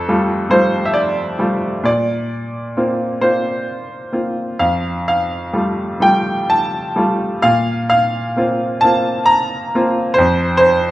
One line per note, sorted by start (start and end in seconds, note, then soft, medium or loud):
0.00 1.82 F2 medium
0.00 1.87 A4 medium
0.09 0.48 G3 soft
0.09 0.49 A3 soft
0.09 0.50 F4 soft
0.50 1.37 G3 soft
0.50 1.37 A3 soft
0.50 1.37 F4 soft
0.50 0.90 C5 medium
0.85 0.94 E5 medium
0.94 1.84 D5 medium
1.39 1.84 G3 soft
1.39 1.84 A3 soft
1.39 1.84 F4 soft
1.83 4.56 A#2 medium
1.83 3.18 D5 medium
2.77 3.19 A#3 soft
2.77 3.20 C4 soft
2.77 3.20 F4 soft
3.21 4.10 A#3 soft
3.21 4.11 C4 soft
3.21 4.11 F4 soft
3.21 4.21 C5 medium
4.12 4.59 A#3 soft
4.12 4.59 C4 soft
4.12 4.59 F4 soft
4.59 7.39 F2 soft
4.59 5.07 F5 medium
5.08 6.06 F5 medium
5.53 5.99 G3 soft
5.53 6.00 A3 soft
5.53 5.99 F4 soft
6.00 6.93 G3 soft
6.00 6.94 A3 soft
6.00 6.93 F4 soft
6.00 6.51 G5 medium
6.50 7.40 A5 medium
6.96 7.42 G3 soft
6.96 7.42 A3 soft
6.96 7.43 F4 soft
7.42 10.12 A#2 medium
7.42 7.88 F5 medium
7.90 8.78 F5 medium
8.36 8.83 A#3 soft
8.36 8.83 C4 soft
8.36 8.83 F4 soft
8.81 9.71 A#3 soft
8.81 9.71 C4 soft
8.81 9.71 F4 soft
8.81 9.24 A5 medium
9.26 10.18 A#5 medium
9.75 10.16 A#3 soft
9.75 10.16 C4 soft
9.75 10.16 F4 medium
10.14 10.56 C5 medium
10.18 10.91 F2 medium
10.57 10.91 C5 medium